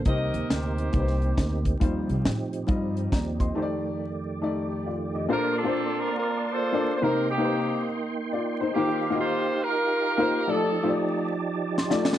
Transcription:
Already playing: A#3 C4
0.05 C2 C3 A#3 D#4 G4 A#4 C5 D#5, kick, closed hi-hat
0.34 D#2, closed hi-hat
0.50 D2 D#4 G4 C5, snare, closed hi-hat
0.78 closed hi-hat
0.93 C2 A#3 D#4 G4 B4, kick, closed hi-hat
1.00 C5
1.08 snare
1.22 closed hi-hat
1.37 D2, kick, snare, closed hi-hat
1.65 kick, closed hi-hat
1.80 D#2 D#3 F3 G3 C4 D#4 F4 C5, kick, closed hi-hat
2.09 C2, closed hi-hat
2.25 A2, snare, closed hi-hat
2.53 closed hi-hat
2.67 G2 G3 D#4 F4 D#5, kick, closed hi-hat
2.97 closed hi-hat
3.12 D#2 D5 A#5, kick, snare, closed hi-hat
3.40 D#5 C6, kick, closed hi-hat
3.55 F2 D#3 A3 D#4 G4 C5 D5
3.62 D5
4.42 A3 D#4 G4 D5
4.86 F4 D5
5.15 G4 D#5
5.29 A#2 A#3 D4 F4 A4 A#4 C5 D5 A5 C6
5.57 C4 D4 A4
5.64 A#3 D4 F4 A4 C5
6.00 A#4
6.15 D4 F4 A#4
6.51 F4 A4 C5
6.73 A#3 D4 F4 A4 D5
6.94 C5
7.02 C3 A#3 C4 D#4 G4 A#4 C5 G5
7.29 A#3 D#4 G4
7.38 A#3 C4 D#4 G4 B4
7.45 C5
8.33 F4 D5
8.61 D#4 C5
8.74 D#3 A#3 C4 D#4 F4 G4 C5 F5
9.10 A#3 D#4 F4 F#4 D#5
9.17 F4 G4 C5
9.63 F4 G4 A#4
10.18 A#3 D#4 F4 G4 C5
10.47 F3 A3 C4 D#4 F4 G4 A4 D5 A5
10.82 A3 D#4 F4 G4 C5
10.90 D5
11.78 C6, snare
11.90 A3 D#4 F4 G4 D5, snare
12.05 snare
12.13 snare

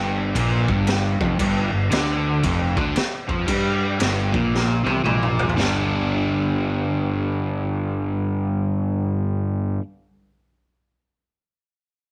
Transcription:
Already playing: G1 G2
0.35 A#1 A#2, kick, crash
0.68 G1 G2, kick
0.87 snare, crash
1.20 F1 F2, kick
1.39 G1 G2, kick, crash
1.73 G1 G2
1.91 D2 D3, snare, crash
2.43 F1 F2, kick, crash
2.77 D2 D3, kick
2.96 muted overdriven electric guitar stroke, muted fingered electric bass stroke, snare, crash
3.29 F2 F3, kick
3.47 G2 G3, kick, crash
3.99 G1 G2, snare, crash
4.33 A#1 A#2, kick
4.55 snare
4.84 C2 C3, high tom
5.04 A#1 A#2, mid tom
5.23 mid tom
5.39 floor tom
5.49 floor tom
5.55 G1 G2 D3 G3 B3
5.59 D4, snare

